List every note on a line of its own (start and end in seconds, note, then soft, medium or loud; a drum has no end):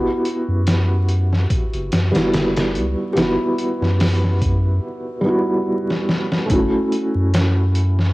0.00 2.09 B3 medium
0.00 2.10 E4 medium
0.00 2.11 F#4 medium
0.00 2.07 G4 medium
0.25 closed hi-hat medium
0.48 1.47 F#2 medium
0.67 snare loud
0.67 closed hi-hat medium
1.09 closed hi-hat medium
1.33 snare soft
1.50 kick loud
1.50 closed hi-hat medium
1.74 1.90 F#1 loud
1.74 closed hi-hat soft
1.92 2.12 F#2 medium
1.92 snare loud
1.92 closed hi-hat medium
2.12 2.77 F#1 loud
2.12 3.11 G3 medium
2.12 3.12 B3 medium
2.12 closed hi-hat medium
2.16 3.13 E4 medium
2.16 3.14 F#4 medium
2.16 snare medium
2.34 snare loud
2.34 closed hi-hat medium
2.57 snare medium
2.57 closed hi-hat medium
2.75 2.95 C#2 medium
2.75 closed hi-hat medium
3.13 3.37 F#1 loud
3.13 5.20 B3 medium
3.13 5.19 G4 medium
3.13 closed hi-hat medium
3.17 5.21 E4 medium
3.17 5.22 F#4 medium
3.17 snare loud
3.58 closed hi-hat medium
3.81 4.80 F#2 medium
3.81 snare soft
4.00 snare loud
4.00 open hi-hat medium
4.24 snare soft
4.42 kick medium
4.42 closed hi-hat medium
5.21 6.43 G3 medium
5.21 6.45 B3 medium
5.26 6.46 E4 medium
5.26 6.47 F#4 medium
5.90 snare soft
6.09 snare medium
6.32 snare medium
6.46 8.13 A3 medium
6.46 8.13 C#4 medium
6.46 closed hi-hat medium
6.50 6.70 F#1 loud
6.50 8.13 E4 medium
6.50 8.13 F#4 medium
6.50 kick loud
6.92 closed hi-hat medium
7.15 8.13 F#2 medium
7.34 snare loud
7.34 closed hi-hat medium
7.75 closed hi-hat medium
7.99 snare soft